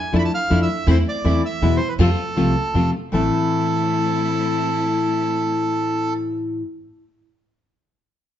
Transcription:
Already playing: bandoneon G#5
0.12 upright bass F2, nylon-string guitar F3 A3 D4 E4, string section F3 D4 E4
0.19 bandoneon B5
0.25 bandoneon A5
0.34 bandoneon F5
0.50 upright bass F2, nylon-string guitar F3 A3 D4 E4, string section F3 D4 E4
0.62 bandoneon E5
0.87 upright bass E2, nylon-string guitar E3 A3 C4 E4, string section A3 C4 E4, bandoneon C5
1.09 bandoneon D5
1.24 upright bass E2, nylon-string guitar E3 A3 C4 E4, string section A3 C4 E4
1.46 bandoneon E5
1.62 upright bass E2, nylon-string guitar B2 E3 G#3 B3 E4, string section G#3 B3 E4
1.77 bandoneon C5
1.89 bandoneon B4
1.99 upright bass F2, nylon-string guitar C3 F3 A3 C4 F4, string section A3 C4 F4, bandoneon A4
2.36 upright bass C2, nylon-string guitar C3 F3 A3 C4 F4, string section A3 C4 F4
2.74 upright bass F2, nylon-string guitar C3 F3 A3 C4 F4, string section A3 C4 F4
3.12 upright bass A1, nylon-string guitar A2 E3 A3 C4 E4, string section A3 C4 E4, bandoneon A4

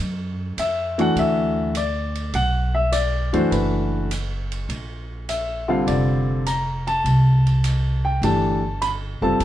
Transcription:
0.00 upright bass F#2
0.57 upright bass F2, grand piano E5, hi-hat pedal, ride
0.98 grand piano E3 A3 D4 F#4 F#5, ride
1.16 upright bass D2, grand piano E5, ride
1.75 grand piano D5, hi-hat pedal, ride
2.15 ride
2.34 upright bass B1, grand piano F#5, ride
2.75 grand piano E5
2.92 grand piano D5, hi-hat pedal, ride
3.33 upright bass F#2, grand piano E3 A3 D4 F#4 C5, ride
3.51 upright bass F#1, grand piano B4, ride
4.11 hi-hat pedal, ride
4.52 ride
4.69 upright bass A#1, ride
5.29 grand piano E5, hi-hat pedal, ride
5.68 grand piano D3 G3 C4 F4 F5
5.87 upright bass F1, grand piano D5, ride
6.46 grand piano A#5, hi-hat pedal, ride
6.87 grand piano A5, ride
7.04 upright bass C2, ride
7.47 ride
7.64 hi-hat pedal, ride
8.05 grand piano G5
8.22 upright bass G1, grand piano E3 A3 D4 G4 A5, ride
8.82 grand piano B5, hi-hat pedal, ride
9.22 upright bass F#1, grand piano G3 C4 F4 A4 A5
9.40 upright bass F1, ride

